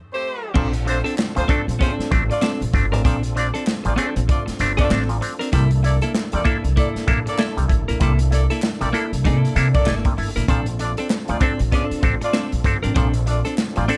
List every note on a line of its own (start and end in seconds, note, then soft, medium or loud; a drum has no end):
0.13 0.54 A3 medium
0.13 0.54 C4 medium
0.13 0.54 G4 medium
0.13 0.54 C5 loud
0.54 1.01 A#1 loud
0.54 0.68 A#2 medium
0.54 0.68 F3 medium
0.54 0.73 C4 loud
0.54 5.49 C4 medium
0.54 0.73 D4 medium
0.54 5.49 D4 medium
0.54 5.49 F4 medium
0.54 5.49 A4 medium
0.54 0.72 A4 medium
0.54 kick loud
0.54 crash loud
0.73 muted clean electric guitar stroke soft
0.73 closed hi-hat medium
0.86 0.99 A3 medium
0.86 0.99 C4 medium
0.86 0.99 D4 medium
0.86 0.99 F4 medium
0.86 0.99 C5 medium
0.86 muted clean electric guitar stroke soft
0.86 closed hi-hat medium
1.04 1.15 C4 medium
1.04 1.15 D4 medium
1.04 1.14 A4 medium
1.04 closed hi-hat medium
1.17 1.25 C4 soft
1.17 1.25 D4 soft
1.17 muted clean electric guitar stroke soft
1.17 snare loud
1.17 clap loud
1.35 1.48 D2 medium
1.35 1.45 A#2 medium
1.35 1.45 F3 medium
1.35 1.45 A3 medium
1.35 1.45 C4 medium
1.35 1.45 F4 medium
1.35 1.45 C5 loud
1.35 muted clean electric guitar stroke soft
1.35 closed hi-hat medium
1.48 1.61 A3 medium
1.48 1.66 C4 medium
1.48 1.61 C4 medium
1.48 1.67 D4 medium
1.48 1.62 D4 medium
1.48 1.66 A4 loud
1.48 kick loud
1.48 closed hi-hat medium
1.67 1.79 A#1 medium
1.67 muted clean electric guitar stroke medium
1.67 closed hi-hat medium
1.79 1.93 A3 medium
1.79 1.91 B3 medium
1.79 1.92 C4 medium
1.79 1.93 C#4 medium
1.79 1.93 F4 medium
1.79 1.94 G#4 medium
1.79 1.92 C5 medium
1.79 kick medium
1.79 closed hi-hat medium
1.91 2.09 C4 medium
1.91 2.10 D4 medium
1.91 2.10 A4 medium
1.99 muted upright bass stroke soft
1.99 snare soft
1.99 closed hi-hat medium
2.11 2.28 A1 loud
2.11 2.23 A3 medium
2.11 2.23 C4 medium
2.11 2.24 D4 loud
2.11 muted clean electric guitar stroke soft
2.11 kick loud
2.11 closed hi-hat medium
2.30 2.50 A3 loud
2.30 2.50 D4 loud
2.30 2.50 F4 loud
2.30 2.50 D5 loud
2.30 muted clean electric guitar stroke soft
2.30 closed hi-hat medium
2.42 2.60 C4 medium
2.42 2.60 D4 medium
2.42 2.61 A4 loud
2.42 snare loud
2.42 clap medium
2.61 2.72 A#1 medium
2.61 closed hi-hat medium
2.73 2.92 G1 medium
2.73 2.86 A3 medium
2.73 2.86 C4 medium
2.73 2.86 D4 loud
2.73 muted clean electric guitar stroke medium
2.73 kick medium
2.73 closed hi-hat medium
2.92 3.03 A1 medium
2.92 3.02 C4 soft
2.92 3.02 D4 medium
2.92 3.01 A#4 medium
2.92 closed hi-hat medium
3.04 3.49 A#1 loud
3.04 3.17 A#2 medium
3.04 3.17 F3 medium
3.04 3.22 C4 medium
3.04 3.22 D4 loud
3.04 3.22 A4 loud
3.04 kick loud
3.04 closed hi-hat loud
3.23 muted clean electric guitar stroke soft
3.23 closed hi-hat medium
3.35 3.48 A3 medium
3.35 3.48 C4 medium
3.35 3.48 D4 medium
3.35 3.48 F4 medium
3.35 3.48 D5 loud
3.35 muted clean electric guitar stroke soft
3.35 closed hi-hat medium
3.54 3.64 C4 medium
3.54 3.64 D4 medium
3.54 3.63 A4 medium
3.54 closed hi-hat medium
3.66 3.75 C4 soft
3.66 3.75 D4 soft
3.66 muted clean electric guitar stroke medium
3.66 snare loud
3.66 clap medium
3.84 3.97 A1 medium
3.84 3.93 A#2 medium
3.84 3.93 F3 medium
3.84 3.94 A3 medium
3.84 3.94 D4 medium
3.84 3.94 F4 medium
3.84 3.94 D5 medium
3.84 muted clean electric guitar stroke soft
3.84 closed hi-hat medium
3.96 4.10 A3 medium
3.96 4.19 C4 medium
3.96 4.10 C4 medium
3.96 4.15 D4 medium
3.96 4.10 D4 medium
3.96 4.14 A4 medium
3.96 closed hi-hat medium
4.15 4.28 A#1 loud
4.15 muted clean electric guitar stroke medium
4.15 closed hi-hat medium
4.28 4.41 A3 medium
4.28 4.41 D4 medium
4.28 4.41 F4 medium
4.28 4.41 D5 medium
4.28 muted clean electric guitar stroke medium
4.28 kick loud
4.28 closed hi-hat medium
4.46 muted clean electric guitar stroke soft
4.46 muted upright bass stroke soft
4.46 snare soft
4.46 closed hi-hat medium
4.59 4.77 G1 medium
4.59 4.72 A3 medium
4.59 4.72 C4 medium
4.59 4.72 D4 loud
4.59 closed hi-hat medium
4.77 4.99 A3 loud
4.77 4.88 C4 medium
4.77 4.89 D4 medium
4.77 4.99 D4 loud
4.77 4.99 F4 loud
4.77 4.90 A4 medium
4.77 4.99 D5 loud
4.77 kick medium
4.77 closed hi-hat medium
4.89 5.19 A1 loud
4.89 5.08 C4 medium
4.89 5.03 C4 medium
4.89 5.08 D4 medium
4.89 5.03 D4 medium
4.89 5.09 A4 medium
4.89 snare loud
4.89 clap loud
5.09 5.17 A#2 medium
5.09 5.17 F3 medium
5.09 closed hi-hat medium
5.21 5.34 C4 medium
5.21 5.34 D4 medium
5.21 muted clean electric guitar stroke soft
5.21 closed hi-hat medium
5.39 5.50 C4 medium
5.39 5.50 D4 medium
5.39 5.49 A#4 medium
5.39 closed hi-hat medium
5.52 5.98 C2 loud
5.52 5.65 C3 medium
5.52 5.65 G3 medium
5.52 5.70 A#3 medium
5.52 10.44 A#3 medium
5.52 13.97 D4 medium
5.52 10.44 E4 medium
5.52 5.70 E4 loud
5.52 10.44 A4 medium
5.52 5.70 A4 loud
5.52 kick loud
5.52 closed hi-hat loud
5.71 muted clean electric guitar stroke soft
5.71 closed hi-hat medium
5.83 5.96 A#3 medium
5.83 5.96 D4 medium
5.83 5.96 E4 medium
5.83 5.96 A4 medium
5.83 5.96 D5 medium
5.83 muted clean electric guitar stroke soft
5.83 closed hi-hat medium
6.02 6.12 A#3 medium
6.02 6.12 E4 medium
6.02 6.11 A4 medium
6.02 closed hi-hat soft
6.14 6.22 E4 soft
6.14 6.22 A4 medium
6.14 muted clean electric guitar stroke soft
6.14 snare loud
6.14 clap medium
6.32 6.45 E2 medium
6.32 6.42 C3 medium
6.32 6.41 G3 medium
6.32 6.42 A#3 medium
6.32 6.42 D4 medium
6.32 6.42 A4 medium
6.32 6.42 D5 medium
6.32 muted clean electric guitar stroke soft
6.32 closed hi-hat medium
6.44 6.57 A#3 medium
6.44 6.63 A#3 medium
6.44 6.57 D4 medium
6.44 6.57 E4 medium
6.44 6.63 E4 medium
6.44 6.58 A4 medium
6.44 6.63 A4 medium
6.44 kick loud
6.44 closed hi-hat medium
6.64 6.76 C2 medium
6.64 muted clean electric guitar stroke medium
6.64 closed hi-hat medium
6.76 7.06 A#3 medium
6.76 6.89 A#3 medium
6.76 6.89 D4 medium
6.76 7.06 E4 medium
6.76 6.89 A4 medium
6.76 7.07 A4 medium
6.76 6.89 D5 medium
6.76 kick loud
6.76 closed hi-hat medium
6.95 muted upright bass stroke soft
6.95 snare soft
6.95 closed hi-hat medium
7.07 7.25 A#1 medium
7.07 7.20 A#3 loud
7.07 7.20 D4 medium
7.07 7.20 E4 medium
7.07 7.20 A4 loud
7.07 muted clean electric guitar stroke soft
7.07 kick loud
7.07 closed hi-hat medium
7.26 7.46 A#3 loud
7.26 7.46 D4 loud
7.26 7.46 A4 loud
7.26 7.46 D5 loud
7.26 muted clean electric guitar stroke soft
7.26 closed hi-hat medium
7.38 7.56 A#3 medium
7.38 7.51 E4 medium
7.38 7.57 E4 medium
7.38 7.51 A4 medium
7.38 7.57 A4 loud
7.38 snare loud
7.38 clap loud
7.57 7.68 C2 medium
7.57 7.65 C3 medium
7.57 7.65 G3 medium
7.57 closed hi-hat medium
7.68 7.86 A1 medium
7.68 7.81 E4 medium
7.68 7.81 A4 medium
7.68 muted clean electric guitar stroke soft
7.68 kick medium
7.68 closed hi-hat medium
7.88 8.00 A#1 medium
7.88 7.99 A#3 medium
7.88 7.98 E4 medium
7.88 7.97 A#4 medium
7.88 closed hi-hat medium
8.00 8.45 C2 loud
8.00 8.13 C3 medium
8.00 8.12 G3 medium
8.00 8.18 A#3 medium
8.00 8.19 E4 medium
8.00 8.19 A4 loud
8.00 kick loud
8.00 closed hi-hat loud
8.19 closed hi-hat medium
8.31 8.43 A#3 medium
8.31 8.44 D4 medium
8.31 8.43 E4 medium
8.31 8.44 A4 medium
8.31 8.44 D5 medium
8.31 muted clean electric guitar stroke soft
8.31 closed hi-hat medium
8.50 8.60 A#3 medium
8.50 8.60 E4 medium
8.50 8.59 A4 medium
8.50 closed hi-hat soft
8.62 8.70 E4 soft
8.62 8.70 A4 medium
8.62 muted clean electric guitar stroke soft
8.62 snare loud
8.62 clap medium
8.81 8.93 A#1 medium
8.81 8.89 C3 medium
8.81 8.89 G3 medium
8.81 8.89 A#3 medium
8.81 8.90 D4 medium
8.81 8.89 A4 medium
8.81 8.90 D5 medium
8.81 muted clean electric guitar stroke soft
8.81 closed hi-hat medium
8.93 9.11 A#3 medium
8.93 9.06 A#3 medium
8.93 9.06 D4 medium
8.93 9.06 E4 medium
8.93 9.11 E4 loud
8.93 9.06 A4 medium
8.93 9.12 A4 loud
8.93 closed hi-hat medium
9.13 9.24 C2 medium
9.13 closed hi-hat medium
9.24 9.42 C3 loud
9.24 9.36 A3 medium
9.24 9.36 A#3 medium
9.24 9.36 D4 medium
9.24 9.38 D#4 loud
9.24 9.38 G#4 loud
9.24 9.36 A4 medium
9.24 9.36 D5 medium
9.24 kick medium
9.24 closed hi-hat medium
9.36 9.54 A#3 medium
9.36 9.54 E4 loud
9.36 9.55 A4 loud
9.45 closed hi-hat medium
9.56 9.73 C3 loud
9.56 9.68 A#3 loud
9.56 9.68 D4 medium
9.56 9.68 E4 medium
9.56 9.68 A4 loud
9.56 closed hi-hat medium
9.74 9.86 C2 medium
9.74 9.94 A#3 medium
9.74 9.94 D4 loud
9.74 9.94 A4 loud
9.74 9.94 D5 loud
9.74 muted clean electric guitar stroke soft
9.74 kick medium
9.74 closed hi-hat medium
9.86 10.04 G1 medium
9.86 10.09 A#3 medium
9.86 9.99 E4 medium
9.86 10.09 E4 medium
9.86 9.99 A4 medium
9.86 10.10 A4 medium
9.86 snare loud
9.86 clap medium
10.05 10.13 C3 medium
10.05 10.13 G3 medium
10.05 kick loud
10.05 closed hi-hat medium
10.17 10.35 G1 medium
10.17 10.30 E4 medium
10.17 10.30 A4 medium
10.17 muted clean electric guitar stroke soft
10.17 open hi-hat medium
10.36 10.47 A1 medium
10.36 10.46 A#3 medium
10.36 10.46 E4 medium
10.36 10.45 A#4 medium
10.36 closed hi-hat medium
10.48 10.93 A#1 loud
10.48 10.61 A#2 medium
10.48 10.61 F3 medium
10.48 10.66 C4 medium
10.48 13.97 C4 medium
10.48 10.66 D4 loud
10.48 13.97 F4 medium
10.48 13.97 A4 medium
10.48 10.66 A4 medium
10.48 kick loud
10.48 closed hi-hat loud
10.66 muted clean electric guitar stroke soft
10.66 closed hi-hat medium
10.79 10.92 A3 medium
10.79 10.92 D4 medium
10.79 10.92 F4 medium
10.79 10.92 A4 medium
10.79 10.92 D5 medium
10.79 muted clean electric guitar stroke soft
10.79 closed hi-hat medium
10.97 11.08 C4 medium
10.97 11.08 D4 medium
10.97 11.07 A4 medium
10.97 closed hi-hat medium
11.10 11.18 D4 soft
11.10 11.18 A4 soft
11.10 muted clean electric guitar stroke soft
11.10 snare loud
11.10 clap medium
11.28 11.40 D2 medium
11.28 11.37 A#2 medium
11.28 11.37 F3 medium
11.28 11.37 A3 medium
11.28 11.37 D4 medium
11.28 11.38 F4 medium
11.28 11.37 D5 medium
11.28 muted clean electric guitar stroke medium
11.28 closed hi-hat medium
11.40 11.53 C4 medium
11.40 11.59 C4 medium
11.40 11.53 D4 medium
11.40 11.60 D4 medium
11.40 11.53 A4 medium
11.40 11.59 A4 medium
11.40 kick loud
11.40 closed hi-hat medium
11.59 11.71 A#1 medium
11.59 muted clean electric guitar stroke soft
11.59 closed hi-hat medium
11.72 11.85 A3 medium
11.72 11.84 B3 medium
11.72 11.85 C#4 medium
11.72 11.85 D4 medium
11.72 11.84 F4 medium
11.72 11.86 G#4 medium
11.72 11.85 D5 loud
11.72 kick loud
11.72 closed hi-hat medium
11.84 12.01 C4 medium
11.84 12.02 D4 medium
11.84 12.02 A4 medium
11.91 muted upright bass stroke soft
11.91 closed hi-hat medium
12.02 12.20 A1 loud
12.02 12.15 C4 medium
12.02 12.15 D4 medium
12.02 12.15 A4 loud
12.02 muted clean electric guitar stroke soft
12.02 kick loud
12.02 closed hi-hat medium
12.21 12.42 A3 loud
12.21 12.42 D4 medium
12.21 12.43 F4 loud
12.21 12.42 D5 loud
12.21 muted clean electric guitar stroke medium
12.21 closed hi-hat medium
12.33 12.51 C4 medium
12.33 12.52 D4 medium
12.33 12.52 A4 medium
12.33 snare loud
12.33 clap medium
12.52 12.64 A#1 medium
12.52 closed hi-hat medium
12.64 12.82 G1 medium
12.64 12.77 C4 loud
12.64 12.77 D4 medium
12.64 12.77 A4 medium
12.64 muted clean electric guitar stroke medium
12.64 kick medium
12.64 closed hi-hat medium
12.83 12.95 A1 medium
12.83 12.93 C4 medium
12.83 12.93 D4 medium
12.83 12.92 A#4 medium
12.83 closed hi-hat medium
12.95 13.41 A#1 loud
12.95 13.08 A#2 medium
12.95 13.08 F3 medium
12.95 13.13 C4 loud
12.95 13.13 D4 loud
12.95 13.13 A4 loud
12.95 kick loud
12.95 closed hi-hat loud
13.14 muted clean electric guitar stroke medium
13.14 closed hi-hat medium
13.26 13.40 A3 medium
13.26 13.39 D4 medium
13.26 13.40 D4 medium
13.26 13.40 F4 medium
13.26 13.39 A4 medium
13.26 13.40 D5 medium
13.26 muted clean electric guitar stroke soft
13.26 closed hi-hat medium
13.45 13.55 C4 medium
13.45 13.55 D4 medium
13.45 13.54 A4 medium
13.45 closed hi-hat soft
13.58 13.66 D4 soft
13.58 13.66 A4 soft
13.58 muted clean electric guitar stroke soft
13.58 snare loud
13.58 clap loud
13.76 13.88 A1 medium
13.76 13.85 A#2 medium
13.76 13.85 F3 medium
13.76 13.85 A3 medium
13.76 13.85 D4 medium
13.76 13.85 F4 medium
13.76 13.85 D5 medium
13.76 muted clean electric guitar stroke medium
13.76 closed hi-hat medium
13.88 13.97 C4 medium
13.88 13.97 D4 medium
13.88 13.97 D4 loud
13.88 13.97 A4 medium
13.88 closed hi-hat medium